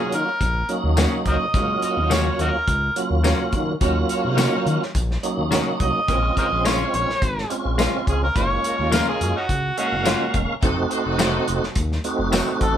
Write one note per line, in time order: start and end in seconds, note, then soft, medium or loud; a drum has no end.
0.00 0.30 F#3 medium
0.00 0.30 A#3 medium
0.00 0.30 C#4 medium
0.00 0.27 D#4 medium
0.00 0.30 F4 medium
0.00 0.16 G#4 medium
0.00 0.27 C#5 medium
0.12 0.24 D#3 loud
0.12 0.69 A#4 medium
0.12 closed hi-hat medium
0.41 0.63 A#1 loud
0.41 kick medium
0.41 closed hi-hat medium
0.69 1.46 F#3 medium
0.69 1.46 A#3 medium
0.69 1.46 C#4 medium
0.69 1.46 D#4 medium
0.69 closed hi-hat medium
0.84 1.06 D#2 loud
0.97 1.15 D#3 medium
0.97 1.15 A#3 medium
0.97 1.15 C#4 medium
0.97 1.16 F#4 medium
0.97 snare loud
0.97 closed hi-hat medium
0.97 tambourine loud
1.26 1.37 C#2 loud
1.26 1.36 A#4 medium
1.26 1.36 C5 medium
1.26 1.82 D#5 medium
1.26 kick medium
1.26 closed hi-hat medium
1.54 1.77 G#2 medium
1.54 2.57 F#3 medium
1.54 2.57 A#3 medium
1.54 2.57 C#4 medium
1.54 1.69 D#4 medium
1.54 2.57 F4 medium
1.54 1.69 F#4 medium
1.54 1.69 C#5 medium
1.54 kick loud
1.54 closed hi-hat medium
1.82 1.90 F#4 medium
1.82 1.91 C#5 medium
1.82 2.14 D#5 medium
1.82 closed hi-hat medium
1.97 2.31 D#2 medium
1.97 2.54 D#4 medium
1.97 2.54 C#5 medium
2.10 2.28 D#3 medium
2.10 2.28 A#3 medium
2.10 2.29 C#4 medium
2.10 2.29 F#4 medium
2.10 2.39 C#5 medium
2.10 snare loud
2.10 closed hi-hat medium
2.10 tambourine loud
2.39 2.51 D#2 loud
2.39 2.50 D#4 medium
2.39 2.48 F#4 medium
2.39 2.95 A#4 medium
2.39 closed hi-hat medium
2.54 2.61 D#2 soft
2.68 2.90 C#2 loud
2.68 kick medium
2.68 closed hi-hat medium
2.96 3.73 F#3 medium
2.96 3.73 A#3 medium
2.96 3.73 C#4 medium
2.96 3.73 F4 medium
2.96 closed hi-hat medium
3.10 3.33 D#2 medium
3.24 3.42 D#3 medium
3.24 3.42 A#3 medium
3.24 3.42 C#4 medium
3.24 3.43 F#4 medium
3.24 snare loud
3.24 closed hi-hat medium
3.24 tambourine loud
3.53 3.75 D#3 loud
3.53 kick medium
3.53 closed hi-hat medium
3.80 4.04 D#2 medium
3.80 4.84 F#3 medium
3.80 4.84 A#3 medium
3.80 4.84 C#4 medium
3.80 3.96 D#4 medium
3.80 4.84 F4 medium
3.80 3.96 F#4 medium
3.80 3.96 C#5 loud
3.80 kick loud
3.80 closed hi-hat medium
4.09 4.17 F#4 medium
4.09 4.17 C#5 loud
4.09 closed hi-hat medium
4.24 4.47 C3 medium
4.24 4.81 D#4 medium
4.24 4.81 C#5 loud
4.37 4.55 D#3 medium
4.37 4.56 A#3 medium
4.37 4.56 C#4 medium
4.37 4.56 F#4 loud
4.37 snare loud
4.37 closed hi-hat loud
4.37 tambourine loud
4.66 4.78 D#3 medium
4.66 closed hi-hat medium
4.82 snare soft
4.95 5.17 A#1 loud
4.95 kick medium
4.95 closed hi-hat medium
5.11 snare soft
5.23 6.00 F#3 medium
5.23 6.00 A#3 medium
5.23 6.00 C#4 medium
5.23 6.00 D#4 medium
5.23 closed hi-hat medium
5.38 5.60 D#2 medium
5.51 5.69 D#3 medium
5.51 5.69 A#3 medium
5.51 5.70 C#4 medium
5.51 5.70 F#4 loud
5.51 snare loud
5.51 closed hi-hat medium
5.51 tambourine loud
5.80 5.92 C2 loud
5.80 6.36 D#5 loud
5.80 kick medium
5.80 closed hi-hat medium
6.08 6.31 A#1 loud
6.08 7.11 G#3 medium
6.08 7.11 C4 medium
6.08 7.11 C#4 medium
6.08 6.23 C#4 medium
6.08 7.11 F4 medium
6.08 6.23 G#4 medium
6.08 6.24 A#4 medium
6.08 kick loud
6.08 closed hi-hat medium
6.37 6.45 G#4 medium
6.37 6.45 A#4 medium
6.37 6.46 A#4 medium
6.37 6.46 C5 medium
6.37 6.65 D#5 medium
6.37 kick medium
6.37 closed hi-hat medium
6.52 6.85 A#1 medium
6.52 7.09 G#4 medium
6.52 7.09 C5 medium
6.65 6.82 G#3 medium
6.65 6.83 C#4 medium
6.65 6.83 F4 medium
6.65 6.93 C#5 medium
6.65 snare loud
6.65 closed hi-hat medium
6.65 tambourine loud
6.94 7.06 A#1 loud
6.94 7.49 C#5 loud
6.94 closed hi-hat medium
7.09 7.16 A#1 soft
7.09 snare soft
7.22 7.45 G#1 loud
7.22 kick medium
7.22 closed hi-hat medium
7.38 snare soft
7.50 8.27 G#3 medium
7.50 8.27 C4 medium
7.50 8.27 C#4 medium
7.50 8.27 F4 medium
7.50 closed hi-hat medium
7.65 7.88 A#1 medium
7.78 7.96 G#3 medium
7.78 7.97 C#4 medium
7.78 7.97 F4 medium
7.78 snare loud
7.78 closed hi-hat medium
7.78 tambourine loud
8.07 8.30 C#2 medium
8.07 8.22 G#4 medium
8.07 kick medium
8.07 closed hi-hat medium
8.24 8.36 A#4 medium
8.35 8.58 F#1 medium
8.35 9.38 G#3 medium
8.35 9.38 A#3 medium
8.35 9.38 C#4 medium
8.35 8.50 F4 medium
8.35 9.38 F4 medium
8.35 8.50 F#4 medium
8.35 8.50 A#4 medium
8.35 8.91 C#5 loud
8.35 kick loud
8.35 closed hi-hat medium
8.64 8.71 F#4 medium
8.64 8.72 A#4 medium
8.64 closed hi-hat medium
8.78 9.01 D#2 loud
8.78 9.35 F4 medium
8.78 9.36 A#4 medium
8.92 9.09 F3 medium
8.92 9.10 A#3 medium
8.92 9.10 C#4 medium
8.92 9.10 F4 medium
8.92 9.07 A#4 medium
8.92 snare loud
8.92 closed hi-hat medium
8.92 tambourine loud
9.09 9.35 G#4 loud
9.21 9.33 F#2 loud
9.21 closed hi-hat medium
9.37 9.46 C#4 medium
9.37 9.45 D#4 medium
9.37 9.77 F#4 medium
9.49 9.72 C#2 loud
9.49 kick medium
9.49 closed hi-hat medium
9.77 10.54 G#3 medium
9.77 10.54 A#3 medium
9.77 10.54 C#4 medium
9.77 9.86 C#4 medium
9.77 9.86 D#4 medium
9.77 10.33 F#4 medium
9.77 10.54 F5 medium
9.77 closed hi-hat medium
9.92 10.15 F#1 loud
10.05 10.23 F3 medium
10.05 10.23 A#3 medium
10.05 10.24 C#4 medium
10.05 10.24 F4 medium
10.05 snare loud
10.05 closed hi-hat medium
10.05 tambourine loud
10.34 10.46 E1 loud
10.34 kick medium
10.34 closed hi-hat medium
10.62 10.85 F1 medium
10.62 11.65 A3 medium
10.62 11.65 C4 medium
10.62 10.77 D#4 medium
10.62 11.65 D#4 medium
10.62 10.77 F#4 medium
10.62 11.65 F#4 medium
10.62 10.77 A4 loud
10.62 kick loud
10.62 closed hi-hat medium
10.90 10.98 F#4 medium
10.90 10.98 C5 loud
10.90 closed hi-hat medium
11.04 11.39 F1 medium
11.04 11.62 D#4 loud
11.04 11.62 F#4 loud
11.04 11.62 A4 medium
11.19 11.37 D#3 medium
11.19 11.37 A3 loud
11.19 11.37 C4 medium
11.19 11.38 F#4 medium
11.19 snare loud
11.19 closed hi-hat medium
11.19 tambourine loud
11.48 11.60 F1 loud
11.48 closed hi-hat medium
11.63 11.69 F1 soft
11.63 snare soft
11.75 11.99 D#2 medium
11.75 kick medium
11.75 closed hi-hat medium
11.92 snare soft
12.04 12.77 A3 loud
12.04 12.77 C4 medium
12.04 12.77 D#4 medium
12.04 12.77 F#4 medium
12.04 closed hi-hat medium
12.19 12.42 F1 medium
12.32 12.50 D#3 medium
12.32 12.51 A3 medium
12.32 12.51 C4 medium
12.32 12.51 F#4 loud
12.32 snare loud
12.32 closed hi-hat medium
12.32 tambourine loud
12.61 12.77 A1 medium
12.61 12.76 A4 loud
12.61 kick medium
12.61 closed hi-hat medium